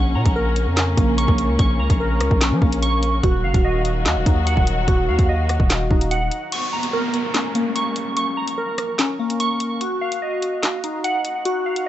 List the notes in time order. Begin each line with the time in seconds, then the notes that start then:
Already playing: A#1 C#3 A#3 C#4 C#6
0.15 A#2 A#5
0.25 A#1, kick, closed hi-hat
0.36 A#4
0.56 closed hi-hat
0.67 F2
0.77 C#4, snare, clap
0.97 A#1 A#3, kick, closed hi-hat
1.18 C#6, closed hi-hat
1.28 A#1, kick
1.38 closed hi-hat
1.49 C#2
1.59 A#1 C#6, kick, closed hi-hat
1.80 C#2 A#5
1.90 A#1, kick, closed hi-hat
2.00 A#4
2.21 C#2, cross-stick, closed hi-hat
2.31 A#1, kick
2.41 C#4, snare, clap, closed hi-hat
2.52 F3
2.62 A#1 A#3, kick
2.73 closed hi-hat
2.82 C#6, closed hi-hat
3.03 closed hi-hat
3.23 D#1 D#3 F#3 F#4, kick, closed hi-hat
3.44 F#1 F5
3.54 D#1, kick, closed hi-hat
3.65 D#5
3.85 closed hi-hat
4.06 D#2, snare, clap
4.16 D#1
4.26 D#2 D#4, kick, closed hi-hat
4.47 F#5, closed hi-hat
4.57 D#1, kick
4.67 closed hi-hat
4.88 D#1 F#4, kick, closed hi-hat
5.08 D#2 F5
5.19 D#2, kick, closed hi-hat
5.29 D#5
5.49 cross-stick, closed hi-hat
5.60 D#1, kick
5.70 snare, clap, closed hi-hat
5.91 D#1 D#4, kick
6.01 closed hi-hat
6.11 F#5, closed hi-hat
6.31 closed hi-hat
6.52 C#6, closed hi-hat, crash, downlifter
6.73 A#5
6.83 closed hi-hat
6.93 A#4
7.14 closed hi-hat
7.34 C#4, snare, clap
7.55 A#3, closed hi-hat
7.75 C#6, closed hi-hat
7.96 closed hi-hat
8.17 C#6, closed hi-hat
8.37 A#5
8.48 closed hi-hat
8.58 A#4
8.78 cross-stick, closed hi-hat
8.99 C#4, snare, clap, closed hi-hat
9.19 A#3
9.30 closed hi-hat
9.40 C#6, closed hi-hat
9.60 closed hi-hat
9.81 F#4, closed hi-hat
10.01 F5
10.12 closed hi-hat
10.22 D#5
10.42 closed hi-hat
10.63 snare, clap
10.84 D#4, closed hi-hat
11.04 F#5, closed hi-hat
11.25 closed hi-hat
11.45 F#4, closed hi-hat
11.66 F5
11.76 closed hi-hat